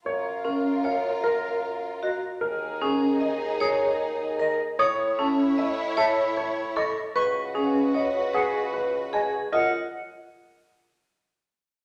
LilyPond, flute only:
\new Staff \with { instrumentName = "Flute" } { \time 6/4 \key fis \major \tempo 4 = 152 r1 r4 dis''8 r8 | r1 r4 dis''8 r8 | dis'''8 r2 r8 e''8 r4. dis''8 r8 | cis'''8 r2 r8 fis''8 r4. dis''8 r8 |
fis''8 r1 r4. | }